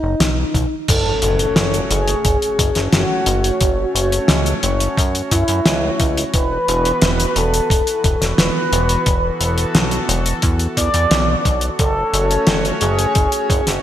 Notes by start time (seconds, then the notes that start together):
Already playing: D#4
0.03 F#1
0.20 B1, snare, closed hi-hat
0.54 B1, kick, closed hi-hat
0.88 F#1 A3 C#4 F#4 A4 C#5, kick, closed hi-hat, crash, impact
1.22 F#1, closed hi-hat
1.39 closed hi-hat
1.56 F#1, snare, closed hi-hat
1.74 closed hi-hat
1.91 F#1 G#4, closed hi-hat
2.08 closed hi-hat
2.25 F#1, kick, closed hi-hat
2.42 closed hi-hat
2.59 F#1, kick, closed hi-hat
2.75 F#1, snare, closed hi-hat
2.93 F#1 F#4, snare, closed hi-hat
3.26 F#1, closed hi-hat
3.44 closed hi-hat
3.61 F#1, kick, closed hi-hat
3.95 F#1, closed hi-hat
4.12 closed hi-hat
4.28 C#2, snare, closed hi-hat
4.46 closed hi-hat
4.63 F#1, closed hi-hat
4.80 closed hi-hat
4.97 F#2, kick, closed hi-hat
5.15 closed hi-hat
5.31 F#2 E4, kick, closed hi-hat
5.48 F#2, closed hi-hat
5.66 C#2, snare, closed hi-hat
6.00 C#2, kick, closed hi-hat
6.17 closed hi-hat
6.34 E1 E3 B3 B4, kick, closed hi-hat
6.68 E1, closed hi-hat
6.85 closed hi-hat
7.02 E1, snare, closed hi-hat
7.20 closed hi-hat
7.36 E1 A4, closed hi-hat
7.54 closed hi-hat
7.70 E1, kick, closed hi-hat
7.87 closed hi-hat
8.04 E1, kick, closed hi-hat
8.21 E1, snare, closed hi-hat
8.38 E1 B4, snare, closed hi-hat
8.72 E1, closed hi-hat
8.89 closed hi-hat
9.06 E1 A4, kick, closed hi-hat
9.41 E1, closed hi-hat
9.58 closed hi-hat
9.75 B1, snare, closed hi-hat
9.91 closed hi-hat
10.09 E1, closed hi-hat
10.26 closed hi-hat
10.42 E2, kick, closed hi-hat
10.59 closed hi-hat
10.77 E2 D5, kick, closed hi-hat
10.94 E2, closed hi-hat
11.11 B1, snare, closed hi-hat
11.45 B1, kick, closed hi-hat
11.61 closed hi-hat
11.79 F#1 A3 C#4 A4 C#5, kick, closed hi-hat
12.14 F#1, closed hi-hat
12.31 closed hi-hat
12.47 F#1, snare, closed hi-hat
12.65 closed hi-hat
12.81 F#1 G#4, closed hi-hat
12.99 closed hi-hat
13.15 F#1, kick, closed hi-hat
13.32 closed hi-hat
13.50 F#1, kick, closed hi-hat
13.67 F#1, snare, closed hi-hat